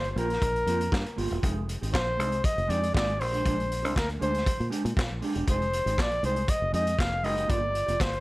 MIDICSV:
0, 0, Header, 1, 6, 480
1, 0, Start_track
1, 0, Tempo, 505476
1, 1355, Time_signature, 4, 2, 24, 8
1, 7788, End_track
2, 0, Start_track
2, 0, Title_t, "Flugelhorn"
2, 0, Program_c, 0, 56
2, 0, Note_on_c, 0, 72, 100
2, 96, Note_off_c, 0, 72, 0
2, 96, Note_on_c, 0, 72, 61
2, 170, Note_on_c, 0, 70, 105
2, 184, Note_off_c, 0, 72, 0
2, 1123, Note_off_c, 0, 70, 0
2, 1840, Note_on_c, 0, 72, 114
2, 2324, Note_on_c, 0, 75, 105
2, 2339, Note_off_c, 0, 72, 0
2, 2561, Note_on_c, 0, 74, 103
2, 2575, Note_off_c, 0, 75, 0
2, 2795, Note_off_c, 0, 74, 0
2, 2801, Note_on_c, 0, 74, 102
2, 3040, Note_on_c, 0, 72, 105
2, 3054, Note_off_c, 0, 74, 0
2, 3758, Note_off_c, 0, 72, 0
2, 3778, Note_on_c, 0, 70, 93
2, 3881, Note_off_c, 0, 70, 0
2, 4013, Note_on_c, 0, 72, 106
2, 4452, Note_off_c, 0, 72, 0
2, 5226, Note_on_c, 0, 72, 99
2, 5709, Note_on_c, 0, 74, 113
2, 5723, Note_off_c, 0, 72, 0
2, 5932, Note_off_c, 0, 74, 0
2, 5939, Note_on_c, 0, 72, 108
2, 6170, Note_on_c, 0, 75, 107
2, 6185, Note_off_c, 0, 72, 0
2, 6401, Note_off_c, 0, 75, 0
2, 6406, Note_on_c, 0, 75, 108
2, 6641, Note_on_c, 0, 77, 108
2, 6656, Note_off_c, 0, 75, 0
2, 6880, Note_on_c, 0, 75, 98
2, 6894, Note_off_c, 0, 77, 0
2, 7123, Note_on_c, 0, 74, 116
2, 7137, Note_off_c, 0, 75, 0
2, 7602, Note_on_c, 0, 72, 106
2, 7617, Note_off_c, 0, 74, 0
2, 7788, Note_off_c, 0, 72, 0
2, 7788, End_track
3, 0, Start_track
3, 0, Title_t, "Clean electric guitar"
3, 0, Program_c, 1, 27
3, 149, Note_on_c, 1, 58, 86
3, 160, Note_on_c, 1, 65, 94
3, 167, Note_on_c, 1, 67, 115
3, 262, Note_off_c, 1, 67, 0
3, 279, Note_off_c, 1, 65, 0
3, 325, Note_off_c, 1, 58, 0
3, 639, Note_on_c, 1, 58, 96
3, 649, Note_on_c, 1, 65, 90
3, 661, Note_on_c, 1, 67, 102
3, 755, Note_off_c, 1, 67, 0
3, 768, Note_off_c, 1, 65, 0
3, 810, Note_off_c, 1, 58, 0
3, 1106, Note_on_c, 1, 58, 88
3, 1118, Note_on_c, 1, 65, 108
3, 1127, Note_on_c, 1, 67, 95
3, 1222, Note_off_c, 1, 67, 0
3, 1232, Note_off_c, 1, 65, 0
3, 1234, Note_on_c, 1, 67, 62
3, 1241, Note_off_c, 1, 58, 0
3, 1243, Note_on_c, 1, 65, 68
3, 1253, Note_on_c, 1, 58, 54
3, 1346, Note_off_c, 1, 58, 0
3, 1350, Note_on_c, 1, 56, 80
3, 1355, Note_off_c, 1, 65, 0
3, 1356, Note_off_c, 1, 67, 0
3, 1359, Note_on_c, 1, 63, 91
3, 1367, Note_on_c, 1, 67, 88
3, 1466, Note_off_c, 1, 67, 0
3, 1482, Note_off_c, 1, 63, 0
3, 1525, Note_off_c, 1, 56, 0
3, 1722, Note_on_c, 1, 67, 62
3, 1729, Note_on_c, 1, 63, 52
3, 1736, Note_on_c, 1, 56, 49
3, 1816, Note_off_c, 1, 56, 0
3, 1823, Note_off_c, 1, 63, 0
3, 1833, Note_off_c, 1, 67, 0
3, 2065, Note_on_c, 1, 56, 100
3, 2079, Note_on_c, 1, 63, 86
3, 2085, Note_on_c, 1, 67, 97
3, 2179, Note_off_c, 1, 67, 0
3, 2191, Note_off_c, 1, 63, 0
3, 2243, Note_off_c, 1, 56, 0
3, 2541, Note_on_c, 1, 56, 94
3, 2551, Note_on_c, 1, 63, 97
3, 2558, Note_on_c, 1, 67, 109
3, 2661, Note_off_c, 1, 67, 0
3, 2674, Note_off_c, 1, 63, 0
3, 2721, Note_off_c, 1, 56, 0
3, 2785, Note_on_c, 1, 56, 99
3, 2792, Note_on_c, 1, 63, 91
3, 2801, Note_on_c, 1, 67, 109
3, 2903, Note_off_c, 1, 67, 0
3, 2914, Note_off_c, 1, 63, 0
3, 2963, Note_off_c, 1, 56, 0
3, 3153, Note_on_c, 1, 67, 60
3, 3165, Note_on_c, 1, 62, 63
3, 3170, Note_on_c, 1, 56, 55
3, 3259, Note_off_c, 1, 56, 0
3, 3270, Note_on_c, 1, 56, 82
3, 3271, Note_off_c, 1, 62, 0
3, 3277, Note_off_c, 1, 67, 0
3, 3283, Note_on_c, 1, 62, 86
3, 3288, Note_on_c, 1, 67, 86
3, 3379, Note_off_c, 1, 67, 0
3, 3392, Note_off_c, 1, 62, 0
3, 3446, Note_off_c, 1, 56, 0
3, 3631, Note_on_c, 1, 67, 68
3, 3638, Note_on_c, 1, 62, 60
3, 3644, Note_on_c, 1, 56, 53
3, 3737, Note_off_c, 1, 56, 0
3, 3745, Note_off_c, 1, 62, 0
3, 3751, Note_off_c, 1, 67, 0
3, 3982, Note_on_c, 1, 56, 105
3, 3994, Note_on_c, 1, 62, 101
3, 4000, Note_on_c, 1, 67, 98
3, 4098, Note_off_c, 1, 67, 0
3, 4110, Note_off_c, 1, 62, 0
3, 4162, Note_off_c, 1, 56, 0
3, 4460, Note_on_c, 1, 56, 98
3, 4467, Note_on_c, 1, 62, 84
3, 4474, Note_on_c, 1, 67, 104
3, 4583, Note_off_c, 1, 67, 0
3, 4595, Note_off_c, 1, 62, 0
3, 4641, Note_off_c, 1, 56, 0
3, 4951, Note_on_c, 1, 56, 90
3, 4961, Note_on_c, 1, 62, 101
3, 4973, Note_on_c, 1, 67, 100
3, 5069, Note_off_c, 1, 67, 0
3, 5078, Note_off_c, 1, 62, 0
3, 5080, Note_on_c, 1, 67, 75
3, 5086, Note_off_c, 1, 56, 0
3, 5089, Note_on_c, 1, 62, 64
3, 5098, Note_on_c, 1, 56, 47
3, 5184, Note_off_c, 1, 56, 0
3, 5195, Note_on_c, 1, 56, 88
3, 5196, Note_off_c, 1, 62, 0
3, 5200, Note_off_c, 1, 67, 0
3, 5200, Note_on_c, 1, 63, 87
3, 5212, Note_on_c, 1, 67, 93
3, 5304, Note_off_c, 1, 67, 0
3, 5315, Note_off_c, 1, 63, 0
3, 5368, Note_off_c, 1, 56, 0
3, 5556, Note_on_c, 1, 67, 63
3, 5565, Note_on_c, 1, 63, 55
3, 5576, Note_on_c, 1, 56, 50
3, 5658, Note_off_c, 1, 56, 0
3, 5668, Note_off_c, 1, 63, 0
3, 5672, Note_off_c, 1, 67, 0
3, 5914, Note_on_c, 1, 56, 93
3, 5921, Note_on_c, 1, 63, 93
3, 5933, Note_on_c, 1, 67, 95
3, 6027, Note_off_c, 1, 67, 0
3, 6037, Note_off_c, 1, 63, 0
3, 6087, Note_off_c, 1, 56, 0
3, 6383, Note_on_c, 1, 56, 80
3, 6393, Note_on_c, 1, 63, 91
3, 6402, Note_on_c, 1, 67, 94
3, 6502, Note_off_c, 1, 67, 0
3, 6513, Note_off_c, 1, 63, 0
3, 6562, Note_off_c, 1, 56, 0
3, 6865, Note_on_c, 1, 56, 88
3, 6876, Note_on_c, 1, 63, 98
3, 6885, Note_on_c, 1, 67, 100
3, 6983, Note_off_c, 1, 67, 0
3, 6994, Note_off_c, 1, 63, 0
3, 6994, Note_on_c, 1, 67, 74
3, 6999, Note_off_c, 1, 56, 0
3, 7005, Note_on_c, 1, 63, 70
3, 7010, Note_on_c, 1, 56, 57
3, 7093, Note_off_c, 1, 56, 0
3, 7097, Note_on_c, 1, 58, 82
3, 7103, Note_off_c, 1, 63, 0
3, 7105, Note_off_c, 1, 67, 0
3, 7107, Note_on_c, 1, 65, 93
3, 7116, Note_on_c, 1, 67, 100
3, 7208, Note_off_c, 1, 67, 0
3, 7224, Note_off_c, 1, 65, 0
3, 7278, Note_off_c, 1, 58, 0
3, 7467, Note_on_c, 1, 67, 63
3, 7478, Note_on_c, 1, 65, 57
3, 7487, Note_on_c, 1, 58, 59
3, 7569, Note_off_c, 1, 58, 0
3, 7576, Note_off_c, 1, 65, 0
3, 7581, Note_off_c, 1, 67, 0
3, 7788, End_track
4, 0, Start_track
4, 0, Title_t, "Fingered electric bass"
4, 0, Program_c, 2, 33
4, 0, Note_on_c, 2, 31, 95
4, 119, Note_off_c, 2, 31, 0
4, 153, Note_on_c, 2, 34, 109
4, 356, Note_off_c, 2, 34, 0
4, 395, Note_on_c, 2, 34, 95
4, 597, Note_off_c, 2, 34, 0
4, 632, Note_on_c, 2, 41, 92
4, 835, Note_off_c, 2, 41, 0
4, 876, Note_on_c, 2, 43, 106
4, 982, Note_off_c, 2, 43, 0
4, 1118, Note_on_c, 2, 31, 97
4, 1224, Note_off_c, 2, 31, 0
4, 1247, Note_on_c, 2, 28, 96
4, 1340, Note_off_c, 2, 28, 0
4, 1357, Note_on_c, 2, 29, 116
4, 1666, Note_off_c, 2, 29, 0
4, 1731, Note_on_c, 2, 32, 87
4, 1823, Note_off_c, 2, 32, 0
4, 1839, Note_on_c, 2, 34, 96
4, 2083, Note_off_c, 2, 34, 0
4, 2083, Note_on_c, 2, 36, 97
4, 2282, Note_off_c, 2, 36, 0
4, 2448, Note_on_c, 2, 29, 84
4, 2541, Note_off_c, 2, 29, 0
4, 2558, Note_on_c, 2, 41, 93
4, 2759, Note_off_c, 2, 41, 0
4, 2795, Note_on_c, 2, 32, 111
4, 3051, Note_off_c, 2, 32, 0
4, 3051, Note_on_c, 2, 34, 102
4, 3247, Note_off_c, 2, 34, 0
4, 3284, Note_on_c, 2, 34, 106
4, 3652, Note_off_c, 2, 34, 0
4, 3652, Note_on_c, 2, 36, 81
4, 3743, Note_off_c, 2, 36, 0
4, 3761, Note_on_c, 2, 38, 94
4, 3961, Note_off_c, 2, 38, 0
4, 4004, Note_on_c, 2, 38, 100
4, 4202, Note_off_c, 2, 38, 0
4, 4371, Note_on_c, 2, 46, 92
4, 4462, Note_off_c, 2, 46, 0
4, 4605, Note_on_c, 2, 46, 103
4, 4699, Note_off_c, 2, 46, 0
4, 4718, Note_on_c, 2, 46, 104
4, 4824, Note_off_c, 2, 46, 0
4, 4850, Note_on_c, 2, 34, 93
4, 4942, Note_off_c, 2, 34, 0
4, 5087, Note_on_c, 2, 28, 86
4, 5180, Note_off_c, 2, 28, 0
4, 5199, Note_on_c, 2, 29, 82
4, 5507, Note_off_c, 2, 29, 0
4, 5564, Note_on_c, 2, 32, 87
4, 5677, Note_off_c, 2, 32, 0
4, 5677, Note_on_c, 2, 34, 97
4, 5878, Note_off_c, 2, 34, 0
4, 5914, Note_on_c, 2, 36, 96
4, 6116, Note_off_c, 2, 36, 0
4, 6285, Note_on_c, 2, 29, 78
4, 6379, Note_off_c, 2, 29, 0
4, 6395, Note_on_c, 2, 41, 101
4, 6596, Note_off_c, 2, 41, 0
4, 6632, Note_on_c, 2, 29, 106
4, 6885, Note_off_c, 2, 29, 0
4, 6885, Note_on_c, 2, 30, 87
4, 7082, Note_off_c, 2, 30, 0
4, 7114, Note_on_c, 2, 31, 104
4, 7423, Note_off_c, 2, 31, 0
4, 7484, Note_on_c, 2, 29, 80
4, 7578, Note_off_c, 2, 29, 0
4, 7601, Note_on_c, 2, 31, 92
4, 7788, Note_off_c, 2, 31, 0
4, 7788, End_track
5, 0, Start_track
5, 0, Title_t, "Muted clean electric guitar strokes"
5, 41, Note_on_c, 9, 29, 51
5, 136, Note_off_c, 9, 29, 0
5, 273, Note_on_c, 9, 29, 62
5, 368, Note_off_c, 9, 29, 0
5, 526, Note_on_c, 9, 29, 44
5, 621, Note_off_c, 9, 29, 0
5, 766, Note_on_c, 9, 29, 48
5, 861, Note_off_c, 9, 29, 0
5, 875, Note_on_c, 9, 29, 48
5, 970, Note_off_c, 9, 29, 0
5, 1005, Note_on_c, 9, 29, 54
5, 1100, Note_off_c, 9, 29, 0
5, 1477, Note_on_c, 9, 29, 55
5, 1572, Note_off_c, 9, 29, 0
5, 1598, Note_on_c, 9, 29, 51
5, 1693, Note_off_c, 9, 29, 0
5, 1827, Note_on_c, 9, 29, 48
5, 1922, Note_off_c, 9, 29, 0
5, 1955, Note_on_c, 9, 29, 57
5, 2050, Note_off_c, 9, 29, 0
5, 2191, Note_on_c, 9, 29, 48
5, 2286, Note_off_c, 9, 29, 0
5, 2432, Note_on_c, 9, 29, 55
5, 2527, Note_off_c, 9, 29, 0
5, 2673, Note_on_c, 9, 29, 49
5, 2768, Note_off_c, 9, 29, 0
5, 2915, Note_on_c, 9, 29, 42
5, 3010, Note_off_c, 9, 29, 0
5, 3027, Note_on_c, 9, 29, 42
5, 3122, Note_off_c, 9, 29, 0
5, 3390, Note_on_c, 9, 29, 47
5, 3485, Note_off_c, 9, 29, 0
5, 3503, Note_on_c, 9, 29, 48
5, 3598, Note_off_c, 9, 29, 0
5, 3748, Note_on_c, 9, 29, 51
5, 3843, Note_off_c, 9, 29, 0
5, 3871, Note_on_c, 9, 29, 40
5, 3966, Note_off_c, 9, 29, 0
5, 4109, Note_on_c, 9, 29, 55
5, 4204, Note_off_c, 9, 29, 0
5, 4347, Note_on_c, 9, 29, 44
5, 4442, Note_off_c, 9, 29, 0
5, 4594, Note_on_c, 9, 29, 50
5, 4689, Note_off_c, 9, 29, 0
5, 4715, Note_on_c, 9, 29, 47
5, 4810, Note_off_c, 9, 29, 0
5, 4843, Note_on_c, 9, 29, 42
5, 4938, Note_off_c, 9, 29, 0
5, 5316, Note_on_c, 9, 29, 48
5, 5411, Note_off_c, 9, 29, 0
5, 5430, Note_on_c, 9, 29, 41
5, 5525, Note_off_c, 9, 29, 0
5, 5794, Note_on_c, 9, 29, 43
5, 5889, Note_off_c, 9, 29, 0
5, 6038, Note_on_c, 9, 29, 53
5, 6133, Note_off_c, 9, 29, 0
5, 6278, Note_on_c, 9, 29, 42
5, 6373, Note_off_c, 9, 29, 0
5, 6514, Note_on_c, 9, 29, 60
5, 6609, Note_off_c, 9, 29, 0
5, 6752, Note_on_c, 9, 29, 42
5, 6847, Note_off_c, 9, 29, 0
5, 7220, Note_on_c, 9, 29, 52
5, 7315, Note_off_c, 9, 29, 0
5, 7335, Note_on_c, 9, 29, 43
5, 7430, Note_off_c, 9, 29, 0
5, 7580, Note_on_c, 9, 29, 46
5, 7675, Note_off_c, 9, 29, 0
5, 7711, Note_on_c, 9, 29, 55
5, 7788, Note_off_c, 9, 29, 0
5, 7788, End_track
6, 0, Start_track
6, 0, Title_t, "Drums"
6, 40, Note_on_c, 9, 42, 37
6, 135, Note_off_c, 9, 42, 0
6, 165, Note_on_c, 9, 42, 68
6, 260, Note_off_c, 9, 42, 0
6, 285, Note_on_c, 9, 42, 45
6, 307, Note_on_c, 9, 38, 34
6, 380, Note_off_c, 9, 42, 0
6, 397, Note_on_c, 9, 36, 119
6, 398, Note_on_c, 9, 42, 98
6, 402, Note_off_c, 9, 38, 0
6, 492, Note_off_c, 9, 36, 0
6, 493, Note_off_c, 9, 42, 0
6, 531, Note_on_c, 9, 42, 37
6, 626, Note_off_c, 9, 42, 0
6, 639, Note_on_c, 9, 42, 73
6, 734, Note_off_c, 9, 42, 0
6, 767, Note_on_c, 9, 42, 53
6, 862, Note_off_c, 9, 42, 0
6, 875, Note_on_c, 9, 36, 123
6, 892, Note_on_c, 9, 38, 109
6, 899, Note_on_c, 9, 39, 89
6, 970, Note_off_c, 9, 36, 0
6, 987, Note_off_c, 9, 38, 0
6, 994, Note_off_c, 9, 39, 0
6, 1010, Note_on_c, 9, 42, 40
6, 1105, Note_off_c, 9, 42, 0
6, 1121, Note_on_c, 9, 46, 79
6, 1216, Note_off_c, 9, 46, 0
6, 1241, Note_on_c, 9, 42, 46
6, 1336, Note_off_c, 9, 42, 0
6, 1360, Note_on_c, 9, 36, 110
6, 1361, Note_on_c, 9, 42, 89
6, 1455, Note_off_c, 9, 36, 0
6, 1456, Note_off_c, 9, 42, 0
6, 1604, Note_on_c, 9, 42, 65
6, 1699, Note_off_c, 9, 42, 0
6, 1738, Note_on_c, 9, 42, 53
6, 1833, Note_off_c, 9, 42, 0
6, 1839, Note_on_c, 9, 36, 112
6, 1849, Note_on_c, 9, 38, 122
6, 1857, Note_on_c, 9, 39, 98
6, 1934, Note_off_c, 9, 36, 0
6, 1944, Note_off_c, 9, 38, 0
6, 1952, Note_off_c, 9, 39, 0
6, 2089, Note_on_c, 9, 42, 68
6, 2184, Note_off_c, 9, 42, 0
6, 2203, Note_on_c, 9, 42, 45
6, 2298, Note_off_c, 9, 42, 0
6, 2318, Note_on_c, 9, 36, 127
6, 2322, Note_on_c, 9, 42, 101
6, 2413, Note_off_c, 9, 36, 0
6, 2417, Note_off_c, 9, 42, 0
6, 2449, Note_on_c, 9, 42, 39
6, 2544, Note_off_c, 9, 42, 0
6, 2563, Note_on_c, 9, 42, 75
6, 2658, Note_off_c, 9, 42, 0
6, 2691, Note_on_c, 9, 42, 47
6, 2786, Note_off_c, 9, 42, 0
6, 2797, Note_on_c, 9, 36, 114
6, 2816, Note_on_c, 9, 38, 112
6, 2824, Note_on_c, 9, 39, 96
6, 2892, Note_off_c, 9, 36, 0
6, 2911, Note_off_c, 9, 38, 0
6, 2919, Note_off_c, 9, 39, 0
6, 2937, Note_on_c, 9, 42, 35
6, 3032, Note_off_c, 9, 42, 0
6, 3045, Note_on_c, 9, 46, 76
6, 3140, Note_off_c, 9, 46, 0
6, 3170, Note_on_c, 9, 42, 53
6, 3265, Note_off_c, 9, 42, 0
6, 3281, Note_on_c, 9, 42, 82
6, 3282, Note_on_c, 9, 36, 112
6, 3376, Note_off_c, 9, 36, 0
6, 3376, Note_off_c, 9, 42, 0
6, 3418, Note_on_c, 9, 42, 39
6, 3513, Note_off_c, 9, 42, 0
6, 3530, Note_on_c, 9, 42, 64
6, 3625, Note_off_c, 9, 42, 0
6, 3655, Note_on_c, 9, 42, 49
6, 3750, Note_off_c, 9, 42, 0
6, 3762, Note_on_c, 9, 36, 114
6, 3774, Note_on_c, 9, 38, 127
6, 3782, Note_on_c, 9, 39, 109
6, 3857, Note_off_c, 9, 36, 0
6, 3869, Note_off_c, 9, 38, 0
6, 3877, Note_off_c, 9, 39, 0
6, 3888, Note_on_c, 9, 42, 36
6, 3983, Note_off_c, 9, 42, 0
6, 4007, Note_on_c, 9, 42, 63
6, 4102, Note_off_c, 9, 42, 0
6, 4126, Note_on_c, 9, 42, 45
6, 4147, Note_on_c, 9, 38, 35
6, 4220, Note_off_c, 9, 42, 0
6, 4239, Note_on_c, 9, 36, 126
6, 4242, Note_off_c, 9, 38, 0
6, 4243, Note_on_c, 9, 42, 101
6, 4334, Note_off_c, 9, 36, 0
6, 4338, Note_off_c, 9, 42, 0
6, 4373, Note_on_c, 9, 42, 39
6, 4468, Note_off_c, 9, 42, 0
6, 4483, Note_on_c, 9, 42, 75
6, 4578, Note_off_c, 9, 42, 0
6, 4610, Note_on_c, 9, 42, 55
6, 4705, Note_off_c, 9, 42, 0
6, 4717, Note_on_c, 9, 36, 119
6, 4737, Note_on_c, 9, 38, 121
6, 4744, Note_on_c, 9, 39, 98
6, 4812, Note_off_c, 9, 36, 0
6, 4831, Note_off_c, 9, 38, 0
6, 4839, Note_off_c, 9, 39, 0
6, 4959, Note_on_c, 9, 46, 73
6, 5053, Note_off_c, 9, 46, 0
6, 5080, Note_on_c, 9, 42, 46
6, 5175, Note_off_c, 9, 42, 0
6, 5199, Note_on_c, 9, 42, 90
6, 5200, Note_on_c, 9, 36, 105
6, 5294, Note_off_c, 9, 42, 0
6, 5295, Note_off_c, 9, 36, 0
6, 5334, Note_on_c, 9, 42, 36
6, 5429, Note_off_c, 9, 42, 0
6, 5443, Note_on_c, 9, 42, 66
6, 5538, Note_off_c, 9, 42, 0
6, 5573, Note_on_c, 9, 42, 52
6, 5668, Note_off_c, 9, 42, 0
6, 5679, Note_on_c, 9, 36, 115
6, 5688, Note_on_c, 9, 38, 127
6, 5696, Note_on_c, 9, 39, 96
6, 5774, Note_off_c, 9, 36, 0
6, 5783, Note_off_c, 9, 38, 0
6, 5791, Note_off_c, 9, 39, 0
6, 5806, Note_on_c, 9, 42, 39
6, 5901, Note_off_c, 9, 42, 0
6, 5921, Note_on_c, 9, 42, 66
6, 6016, Note_off_c, 9, 42, 0
6, 6041, Note_on_c, 9, 42, 46
6, 6136, Note_off_c, 9, 42, 0
6, 6156, Note_on_c, 9, 36, 115
6, 6156, Note_on_c, 9, 42, 102
6, 6251, Note_off_c, 9, 36, 0
6, 6251, Note_off_c, 9, 42, 0
6, 6397, Note_on_c, 9, 42, 75
6, 6491, Note_off_c, 9, 42, 0
6, 6522, Note_on_c, 9, 42, 56
6, 6617, Note_off_c, 9, 42, 0
6, 6634, Note_on_c, 9, 36, 122
6, 6648, Note_on_c, 9, 38, 116
6, 6656, Note_on_c, 9, 39, 100
6, 6729, Note_off_c, 9, 36, 0
6, 6743, Note_off_c, 9, 38, 0
6, 6751, Note_off_c, 9, 39, 0
6, 6876, Note_on_c, 9, 46, 76
6, 6971, Note_off_c, 9, 46, 0
6, 7003, Note_on_c, 9, 42, 44
6, 7098, Note_off_c, 9, 42, 0
6, 7117, Note_on_c, 9, 42, 95
6, 7118, Note_on_c, 9, 36, 114
6, 7212, Note_off_c, 9, 42, 0
6, 7213, Note_off_c, 9, 36, 0
6, 7359, Note_on_c, 9, 42, 61
6, 7454, Note_off_c, 9, 42, 0
6, 7485, Note_on_c, 9, 42, 51
6, 7580, Note_off_c, 9, 42, 0
6, 7597, Note_on_c, 9, 36, 120
6, 7604, Note_on_c, 9, 38, 121
6, 7612, Note_on_c, 9, 39, 105
6, 7692, Note_off_c, 9, 36, 0
6, 7699, Note_off_c, 9, 38, 0
6, 7706, Note_off_c, 9, 39, 0
6, 7723, Note_on_c, 9, 42, 37
6, 7788, Note_off_c, 9, 42, 0
6, 7788, End_track
0, 0, End_of_file